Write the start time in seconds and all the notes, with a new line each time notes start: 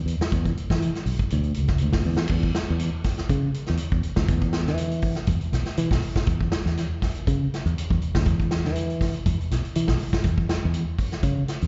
0.06 E2, closed hi-hat
0.20 muted fingered electric bass stroke, snare, closed hi-hat
0.32 E2, kick, closed hi-hat
0.45 kick, closed hi-hat
0.57 closed hi-hat
0.70 E3, kick, snare, closed hi-hat
0.82 closed hi-hat
0.95 snare, closed hi-hat
1.06 B1, open hi-hat
1.19 kick
1.30 D2, closed hi-hat
1.43 closed hi-hat
1.54 C#2, closed hi-hat
1.68 kick, snare, closed hi-hat
1.78 D2, closed hi-hat
1.92 kick, snare, closed hi-hat
2.04 E2, open hi-hat
2.17 snare
2.28 E2, kick, crash
2.43 kick
2.55 snare, closed hi-hat
2.70 E2
2.79 closed hi-hat
3.04 kick, snare, open hi-hat
3.18 muted fingered electric bass stroke, snare, closed hi-hat
3.29 C#3, kick, closed hi-hat
3.54 closed hi-hat
3.66 E2, snare, closed hi-hat
3.77 closed hi-hat
3.92 E2, kick
4.03 muted fingered electric bass stroke, closed hi-hat
4.16 D2, kick, snare, closed hi-hat
4.29 E2, kick, closed hi-hat
4.42 kick, closed hi-hat
4.53 snare, closed hi-hat
4.67 E3, snare
4.77 closed hi-hat
4.91 closed hi-hat
5.02 kick, open hi-hat
5.15 snare, closed hi-hat
5.27 E2, kick, closed hi-hat
5.41 closed hi-hat
5.52 B1, snare, closed hi-hat
5.65 snare, closed hi-hat
5.77 E3, closed hi-hat
5.91 B1, kick, snare
6.02 open hi-hat
6.16 muted fingered electric bass stroke, kick, snare, closed hi-hat
6.26 E2, kick, closed hi-hat
6.41 kick
6.52 snare, closed hi-hat
6.66 E2, snare
6.77 snare, closed hi-hat
7.02 kick, snare, open hi-hat
7.15 muted fingered electric bass stroke, closed hi-hat
7.27 C#3, kick, closed hi-hat
7.54 snare, closed hi-hat
7.66 E2, closed hi-hat
7.78 closed hi-hat
7.90 E2, kick
8.02 muted fingered electric bass stroke, closed hi-hat
8.15 D2, kick, snare, closed hi-hat
8.25 E2, kick, closed hi-hat
8.39 kick, closed hi-hat
8.51 snare, closed hi-hat
8.64 E3, snare
8.76 closed hi-hat
8.90 closed hi-hat
9.01 kick, snare, open hi-hat
9.14 closed hi-hat
9.26 E2, kick, closed hi-hat
9.41 closed hi-hat
9.51 B1, snare, closed hi-hat
9.65 closed hi-hat
9.75 E3, closed hi-hat
9.88 B1, kick, snare
9.99 open hi-hat
10.13 muted fingered electric bass stroke, kick, snare, closed hi-hat
10.24 E2, kick, closed hi-hat
10.38 kick
10.49 snare, closed hi-hat
10.65 E2
10.74 closed hi-hat
10.99 kick, open hi-hat
11.12 muted fingered electric bass stroke, snare, closed hi-hat
11.23 C#3, kick, closed hi-hat
11.48 snare, closed hi-hat
11.62 E2, closed hi-hat